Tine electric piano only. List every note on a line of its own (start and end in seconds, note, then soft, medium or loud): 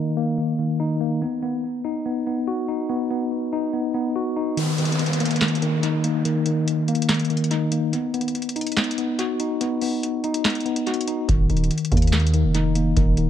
0.00 0.37 D#3 medium
0.00 0.16 A#3 medium
0.00 0.38 D#4 medium
0.17 1.00 A#3 medium
0.38 0.58 D#3 medium
0.59 1.22 D#3 medium
0.80 1.22 D#4 medium
1.01 1.22 A#3 medium
1.22 1.41 B3 medium
1.43 2.04 B3 medium
1.85 2.67 D#4 medium
2.05 2.26 B3 medium
2.27 2.88 B3 medium
2.48 3.73 F#4 medium
2.68 3.51 D#4 medium
2.89 3.09 B3 medium
3.11 3.72 B3 medium
3.53 4.35 D#4 medium
3.73 3.93 B3 medium
3.94 4.57 B3 medium
4.16 4.58 F#4 medium
4.36 4.57 D#4 medium
4.57 4.77 D#3 medium
4.78 5.40 D#3 medium
5.20 6.03 A#3 medium
5.41 5.61 D#3 medium
5.62 6.24 D#3 medium
5.83 7.09 D#4 medium
6.04 6.87 A#3 medium
6.25 6.45 D#3 medium
6.46 7.08 D#3 medium
6.88 7.71 A#3 medium
7.09 7.29 D#3 medium
7.30 7.93 D#3 medium
7.51 7.93 D#4 medium
7.72 7.93 A#3 medium
7.93 8.13 B3 medium
8.14 8.76 B3 medium
8.56 9.39 D#4 medium
8.77 8.97 B3 medium
8.98 9.60 B3 medium
9.19 10.45 F#4 loud
9.40 10.23 D#4 medium
9.61 9.81 B3 medium
9.82 10.43 B3 medium
10.24 11.06 D#4 medium
10.45 10.64 B3 medium
10.66 11.29 B3 medium
10.87 11.29 F#4 medium
11.08 11.29 D#4 medium
11.28 11.48 D#3 medium
11.49 12.11 D#3 medium
11.91 12.74 A#3 medium
12.13 12.32 D#3 medium
12.33 12.96 D#3 medium
12.54 13.30 D#4 medium
12.76 13.30 A#3 medium
12.97 13.17 D#3 medium
13.18 13.30 D#3 medium